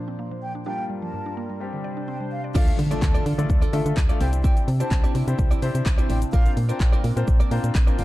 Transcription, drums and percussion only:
2.55 kick, crash, shaker
2.68 closed hi-hat, shaker
2.79 open hi-hat, shaker
2.91 closed hi-hat, shaker
3.02 kick, clap, shaker
3.15 closed hi-hat, shaker
3.26 open hi-hat, shaker
3.39 closed hi-hat, shaker
3.49 kick, shaker
3.62 closed hi-hat, shaker
3.73 open hi-hat, shaker
3.86 closed hi-hat, shaker
3.97 kick, clap, shaker
4.09 closed hi-hat, shaker
4.21 open hi-hat, shaker
4.33 closed hi-hat, shaker
4.44 kick, shaker
4.57 closed hi-hat, shaker
4.68 open hi-hat, shaker
4.80 closed hi-hat, shaker
4.91 kick, clap, shaker
5.04 closed hi-hat, shaker
5.15 open hi-hat, shaker
5.28 closed hi-hat, shaker
5.38 kick, shaker
5.51 closed hi-hat, shaker
5.62 open hi-hat, shaker
5.75 closed hi-hat, shaker
5.86 kick, clap, shaker
5.98 closed hi-hat, shaker
6.10 open hi-hat, shaker
6.22 closed hi-hat, shaker
6.33 kick, shaker
6.46 closed hi-hat, shaker
6.57 open hi-hat, shaker
6.69 closed hi-hat, shaker
6.80 kick, clap, shaker
6.93 closed hi-hat, shaker
7.04 open hi-hat, shaker
7.17 closed hi-hat, shaker
7.27 kick, shaker
7.40 closed hi-hat, shaker
7.51 open hi-hat, shaker
7.64 closed hi-hat, shaker
7.75 kick, clap, shaker
7.88 closed hi-hat, shaker
7.99 open hi-hat, shaker

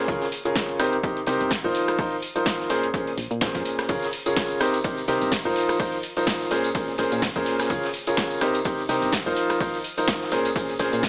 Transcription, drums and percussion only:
0.08 kick, closed hi-hat, shaker
0.21 snare, closed hi-hat
0.32 closed hi-hat, open hi-hat, shaker
0.45 closed hi-hat, shaker
0.55 kick, snare, closed hi-hat, shaker
0.69 closed hi-hat
0.80 cross-stick, closed hi-hat, open hi-hat, shaker
0.93 closed hi-hat, shaker
1.03 kick, closed hi-hat, shaker
1.16 closed hi-hat
1.26 closed hi-hat, open hi-hat, shaker
1.41 closed hi-hat, shaker
1.51 kick, snare, closed hi-hat, shaker
1.64 closed hi-hat
1.75 closed hi-hat, open hi-hat, shaker
1.88 cross-stick, closed hi-hat, shaker
1.99 kick, closed hi-hat, open hi-hat, shaker
2.12 closed hi-hat
2.22 closed hi-hat, open hi-hat, shaker
2.36 closed hi-hat, shaker
2.46 kick, snare, closed hi-hat, shaker
2.60 snare, closed hi-hat
2.69 closed hi-hat, open hi-hat, shaker
2.83 closed hi-hat, shaker
2.94 kick, closed hi-hat, shaker
3.07 open hi-hat
3.18 closed hi-hat, open hi-hat, shaker
3.31 closed hi-hat, shaker
3.41 kick, snare, closed hi-hat, shaker
3.55 kick, snare, closed hi-hat
3.65 closed hi-hat, open hi-hat, shaker
3.78 cross-stick, snare, closed hi-hat, shaker
3.89 kick, closed hi-hat, ride, tambourine, shaker
4.03 snare, closed hi-hat, tambourine
4.12 closed hi-hat, open hi-hat, shaker
4.26 closed hi-hat, tambourine, shaker
4.36 kick, snare, closed hi-hat, ride, tambourine, shaker
4.50 closed hi-hat, tambourine
4.61 cross-stick, closed hi-hat, open hi-hat, shaker
4.74 closed hi-hat, tambourine, shaker
4.84 kick, closed hi-hat, ride, tambourine, shaker
4.97 closed hi-hat, tambourine
5.07 closed hi-hat, open hi-hat, shaker
5.21 closed hi-hat, tambourine, shaker
5.32 kick, snare, closed hi-hat, ride, tambourine, shaker
5.45 closed hi-hat, tambourine
5.56 closed hi-hat, open hi-hat, shaker
5.69 cross-stick, closed hi-hat, tambourine, shaker
5.79 kick, closed hi-hat, open hi-hat, ride, tambourine, shaker
5.93 closed hi-hat, tambourine
6.03 closed hi-hat, open hi-hat, shaker
6.17 closed hi-hat, tambourine, shaker
6.27 kick, snare, closed hi-hat, ride, tambourine, shaker
6.40 snare, closed hi-hat, tambourine
6.51 closed hi-hat, open hi-hat, shaker
6.64 closed hi-hat, tambourine, shaker
6.75 kick, closed hi-hat, ride, tambourine, shaker
6.88 open hi-hat, tambourine
6.98 closed hi-hat, open hi-hat, shaker
7.12 closed hi-hat, tambourine, shaker
7.22 kick, snare, closed hi-hat, ride, tambourine, shaker
7.36 kick, closed hi-hat, tambourine
7.46 closed hi-hat, open hi-hat, shaker
7.59 cross-stick, snare, closed hi-hat, tambourine, shaker
7.70 kick, closed hi-hat, ride, tambourine, shaker
7.83 snare, closed hi-hat, tambourine
7.94 closed hi-hat, open hi-hat, shaker
8.07 closed hi-hat, tambourine, shaker
8.17 kick, snare, closed hi-hat, ride, shaker
8.31 closed hi-hat, tambourine
8.41 cross-stick, closed hi-hat, open hi-hat, shaker
8.54 closed hi-hat, tambourine, shaker
8.65 kick, closed hi-hat, ride, tambourine, shaker
8.78 closed hi-hat, tambourine
8.89 closed hi-hat, open hi-hat, shaker
9.02 closed hi-hat, tambourine, shaker
9.12 kick, snare, closed hi-hat, ride, tambourine, shaker
9.26 closed hi-hat, tambourine
9.37 closed hi-hat, open hi-hat, shaker
9.49 cross-stick, closed hi-hat, tambourine, shaker
9.60 kick, closed hi-hat, open hi-hat, ride, tambourine, shaker
9.74 closed hi-hat, tambourine
9.84 closed hi-hat, open hi-hat, shaker
9.98 closed hi-hat, tambourine, shaker
10.07 kick, snare, closed hi-hat, ride, tambourine, shaker
10.21 snare, closed hi-hat, tambourine
10.32 closed hi-hat, open hi-hat, shaker
10.45 closed hi-hat, tambourine, shaker
10.56 kick, closed hi-hat, ride, tambourine, shaker
10.69 open hi-hat, tambourine
10.79 closed hi-hat, open hi-hat, shaker
10.93 closed hi-hat, tambourine, shaker
11.03 kick, snare, closed hi-hat, ride, tambourine, shaker

